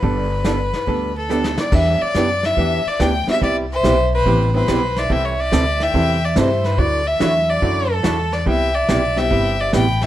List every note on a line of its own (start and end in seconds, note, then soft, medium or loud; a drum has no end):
0.00 0.71 G1 medium
0.00 0.26 G3 medium
0.00 0.26 B3 medium
0.00 0.27 D4 medium
0.00 0.27 A4 medium
0.00 1.16 B4 medium
0.00 brush sweep medium
0.00 kick soft
0.44 0.58 G3 medium
0.44 0.58 B3 medium
0.44 0.58 D4 medium
0.44 0.58 A4 medium
0.44 snare medium
0.44 hi-hat pedal medium
0.73 snare soft
0.87 1.55 D2 medium
0.87 1.11 G3 medium
0.87 1.11 B3 medium
0.87 1.11 D4 medium
0.87 1.11 A4 medium
0.87 brush sweep medium
0.87 kick soft
1.16 1.60 A4 medium
1.16 1.62 A4 medium
1.28 1.70 G3 medium
1.28 1.42 G3 medium
1.28 1.72 A3 medium
1.28 1.70 B3 medium
1.28 1.43 B3 medium
1.28 1.71 D4 medium
1.28 1.43 D4 medium
1.28 1.72 G4 medium
1.28 1.43 A4 medium
1.28 hi-hat pedal medium
1.44 snare medium
1.58 1.74 D5 medium
1.58 1.76 D5 medium
1.58 snare medium
1.71 1.99 E2 medium
1.71 1.96 E3 soft
1.71 1.97 G3 medium
1.71 1.98 B3 medium
1.71 1.96 B3 medium
1.71 1.98 D4 medium
1.71 1.96 D4 medium
1.71 1.98 E4 medium
1.71 1.99 G4 medium
1.71 1.96 G4 medium
1.71 2.04 E5 medium
1.71 2.03 E5 loud
1.71 brush sweep soft
1.71 kick medium
1.71 crash medium
2.01 2.47 D5 loud
2.01 2.47 D5 medium
2.01 muted upright bass stroke soft
2.15 2.56 F#2 medium
2.15 2.28 E3 medium
2.15 2.28 B3 medium
2.15 2.28 D4 medium
2.15 2.28 G4 medium
2.15 snare medium
2.15 hi-hat pedal medium
2.43 2.89 E5 loud
2.43 2.90 E5 medium
2.43 snare soft
2.57 2.83 E2 medium
2.57 2.80 E3 medium
2.57 2.81 B3 medium
2.57 2.81 D4 medium
2.57 2.81 G4 medium
2.57 brush sweep soft
2.57 kick soft
2.85 3.04 D5 medium
2.85 muted upright bass stroke soft
2.99 3.26 D2 medium
2.99 3.12 E3 medium
2.99 3.12 B3 medium
2.99 3.12 D4 medium
2.99 3.12 G4 medium
2.99 3.29 G5 loud
2.99 3.29 G5 medium
2.99 snare medium
2.99 hi-hat pedal medium
3.26 3.40 G3 medium
3.26 3.40 B3 medium
3.26 3.40 C4 medium
3.26 3.40 E4 medium
3.26 3.41 F#4 medium
3.26 3.42 E5 medium
3.26 muted upright bass stroke soft
3.26 snare soft
3.30 3.42 E5 loud
3.41 3.83 C2 medium
3.41 3.64 C3 medium
3.41 3.64 G3 medium
3.41 3.64 B3 medium
3.41 3.65 E4 medium
3.41 3.65 G4 medium
3.41 3.55 D5 loud
3.41 3.57 E5 medium
3.41 brush sweep soft
3.41 kick soft
3.72 4.10 C5 loud
3.72 4.11 E5 medium
3.83 4.24 B1 medium
3.83 3.96 C3 medium
3.83 3.96 G3 medium
3.83 3.97 B3 medium
3.83 3.96 E4 medium
3.83 3.97 G4 medium
3.83 snare medium
3.83 hi-hat pedal medium
4.14 4.52 B4 loud
4.14 4.53 C5 medium
4.26 4.67 A1 medium
4.26 4.49 C3 medium
4.26 4.49 G3 medium
4.26 4.49 B3 medium
4.26 4.49 E4 medium
4.26 4.50 G4 medium
4.26 brush sweep medium
4.26 kick soft
4.54 4.67 G3 medium
4.54 4.67 B3 medium
4.54 4.67 C4 medium
4.54 4.67 E4 medium
4.54 4.67 G4 medium
4.54 5.00 B4 loud
4.54 5.00 C5 medium
4.68 5.09 B1 medium
4.68 4.80 C3 medium
4.68 4.80 G3 medium
4.68 4.81 B3 medium
4.68 4.81 E4 medium
4.68 4.81 G4 medium
4.68 snare medium
4.68 hi-hat pedal medium
4.96 5.14 D5 medium
4.96 5.14 E5 medium
4.96 snare soft
5.10 5.51 C2 medium
5.10 5.33 C3 medium
5.10 5.33 E3 medium
5.10 5.33 G3 medium
5.10 5.33 C4 medium
5.10 5.33 E4 medium
5.10 5.33 A4 medium
5.10 5.27 E5 loud
5.10 5.27 G5 medium
5.10 brush sweep medium
5.10 kick soft
5.25 5.42 C#5 medium
5.25 5.41 E5 medium
5.40 5.84 D5 loud
5.40 5.84 E5 medium
5.52 5.93 D2 medium
5.52 5.64 C3 medium
5.52 5.64 E3 medium
5.52 5.64 G3 medium
5.52 5.64 C4 medium
5.52 5.65 E4 medium
5.52 5.65 A4 medium
5.52 snare medium
5.52 hi-hat pedal medium
5.80 6.26 E5 loud
5.80 6.27 G5 loud
5.80 snare soft
5.93 6.35 E2 medium
5.93 6.17 C3 medium
5.93 6.17 E3 medium
5.93 6.17 G3 medium
5.93 6.17 C4 medium
5.93 6.17 E4 medium
5.93 6.18 A4 medium
5.93 brush sweep medium
5.93 kick soft
6.25 6.38 D5 medium
6.25 6.38 E5 medium
6.35 6.77 G2 medium
6.35 6.48 C3 medium
6.35 6.48 E3 medium
6.35 6.78 G3 medium
6.35 6.49 G3 medium
6.35 6.78 A3 medium
6.35 6.79 C4 medium
6.35 6.49 C4 medium
6.35 6.49 E4 medium
6.35 6.79 E4 medium
6.35 6.79 G4 medium
6.35 6.49 A4 medium
6.35 6.67 C5 medium
6.35 6.68 E5 medium
6.35 snare medium
6.35 hi-hat pedal medium
6.64 6.80 B4 medium
6.64 6.80 C5 medium
6.64 snare soft
6.78 7.19 D2 medium
6.78 7.01 D3 soft
6.78 7.01 F#3 medium
6.78 7.01 A3 medium
6.78 7.01 E4 medium
6.78 7.02 F#4 medium
6.78 7.08 D5 loud
6.78 7.09 D5 medium
6.78 brush sweep medium
6.78 kick soft
7.07 7.51 E5 loud
7.07 7.53 E5 medium
7.19 7.61 E2 medium
7.19 7.33 D3 medium
7.19 7.85 F#3 medium
7.19 7.33 F#3 medium
7.19 7.85 A3 medium
7.19 7.33 A3 medium
7.19 7.85 D4 medium
7.19 7.85 E4 medium
7.19 7.33 E4 medium
7.19 7.86 F#4 medium
7.19 7.33 F#4 medium
7.19 snare medium
7.19 hi-hat pedal medium
7.50 7.94 D5 medium
7.50 7.93 D5 medium
7.62 8.03 F#2 medium
7.62 7.85 D3 medium
7.62 7.86 F#3 medium
7.62 7.86 A3 medium
7.62 7.86 E4 medium
7.62 7.86 F#4 medium
7.62 brush sweep soft
7.62 kick soft
7.92 8.36 A4 medium
7.92 8.34 A4 medium
8.03 8.45 E2 medium
8.03 8.16 D3 medium
8.03 8.16 F#3 medium
8.03 8.16 A3 medium
8.03 8.17 E4 medium
8.03 8.17 F#4 medium
8.03 snare medium
8.03 hi-hat pedal medium
8.32 8.47 D5 medium
8.32 8.48 D5 medium
8.32 snare soft
8.46 8.88 C2 medium
8.46 8.69 C3 medium
8.46 8.70 G3 medium
8.46 8.70 B3 medium
8.46 8.70 E4 medium
8.46 8.70 G4 medium
8.46 8.77 E5 loud
8.46 8.78 G5 medium
8.46 brush sweep soft
8.46 kick soft
8.75 9.19 D5 loud
8.75 9.21 E5 medium
8.89 9.30 B1 medium
8.89 9.01 C3 medium
8.89 9.01 G3 medium
8.89 9.01 B3 medium
8.89 9.02 E4 medium
8.89 9.02 G4 medium
8.89 snare medium
8.89 hi-hat pedal medium
9.16 9.70 G3 medium
9.16 9.70 B3 medium
9.16 9.70 C4 medium
9.16 9.71 E4 medium
9.16 9.71 G4 medium
9.16 9.62 E5 loud
9.16 snare soft
9.20 9.64 G5 loud
9.30 9.72 G1 medium
9.30 9.54 C3 medium
9.30 9.54 G3 medium
9.30 9.54 B3 medium
9.30 9.54 E4 medium
9.30 9.54 G4 medium
9.30 brush sweep medium
9.30 kick soft
9.61 9.74 D5 medium
9.61 9.75 E5 medium
9.73 10.06 A1 medium
9.73 9.85 C3 medium
9.73 9.85 G3 medium
9.73 9.85 B3 medium
9.73 9.86 E4 medium
9.73 9.86 G4 medium
9.73 10.05 G5 medium
9.73 10.04 B5 medium
9.73 snare medium
9.73 hi-hat pedal medium
10.01 10.06 E5 medium
10.01 10.06 G5 medium
10.01 snare soft